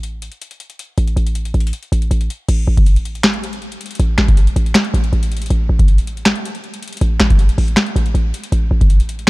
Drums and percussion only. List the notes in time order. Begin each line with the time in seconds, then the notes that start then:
0.03 closed hi-hat
0.22 closed hi-hat
0.32 closed hi-hat
0.42 closed hi-hat
0.51 closed hi-hat
0.60 closed hi-hat
0.70 closed hi-hat
0.79 closed hi-hat
0.98 closed hi-hat
1.07 closed hi-hat
1.17 closed hi-hat
1.27 closed hi-hat
1.35 closed hi-hat
1.45 closed hi-hat
1.54 closed hi-hat
1.60 closed hi-hat
1.67 closed hi-hat
1.73 closed hi-hat
1.83 closed hi-hat
1.93 closed hi-hat
2.02 closed hi-hat
2.11 closed hi-hat
2.21 closed hi-hat
2.30 closed hi-hat
2.49 closed hi-hat, crash
2.77 kick, closed hi-hat
2.86 closed hi-hat
2.96 closed hi-hat
3.05 closed hi-hat
3.15 closed hi-hat
3.23 finger snap, snare, closed hi-hat
3.34 closed hi-hat
3.44 closed hi-hat
3.53 closed hi-hat
3.62 closed hi-hat
3.72 closed hi-hat
3.81 closed hi-hat
3.86 closed hi-hat
3.91 closed hi-hat
3.95 closed hi-hat
4.00 closed hi-hat
4.18 finger snap, snare
4.28 kick, closed hi-hat
4.37 closed hi-hat
4.47 closed hi-hat
4.56 closed hi-hat
4.66 closed hi-hat
4.74 finger snap, snare, closed hi-hat
4.84 closed hi-hat
4.94 closed hi-hat
5.04 closed hi-hat
5.13 closed hi-hat
5.23 closed hi-hat
5.32 closed hi-hat
5.37 closed hi-hat
5.42 closed hi-hat
5.46 closed hi-hat
5.50 closed hi-hat
5.79 kick, closed hi-hat
5.88 closed hi-hat
5.98 closed hi-hat
6.07 closed hi-hat
6.17 closed hi-hat
6.25 finger snap, snare, closed hi-hat
6.35 closed hi-hat
6.45 closed hi-hat
6.55 closed hi-hat
6.64 closed hi-hat
6.74 closed hi-hat
6.82 closed hi-hat
6.88 closed hi-hat
6.93 closed hi-hat
6.97 closed hi-hat
7.01 closed hi-hat
7.20 finger snap, snare
7.30 kick, closed hi-hat
7.39 closed hi-hat
7.49 closed hi-hat
7.58 open hi-hat
7.68 closed hi-hat
7.76 finger snap, snare, closed hi-hat
7.86 closed hi-hat
7.96 closed hi-hat
8.06 closed hi-hat
8.15 closed hi-hat
8.34 closed hi-hat
8.43 closed hi-hat
8.52 closed hi-hat
8.81 kick, closed hi-hat
8.90 closed hi-hat
9.00 closed hi-hat
9.09 closed hi-hat
9.19 closed hi-hat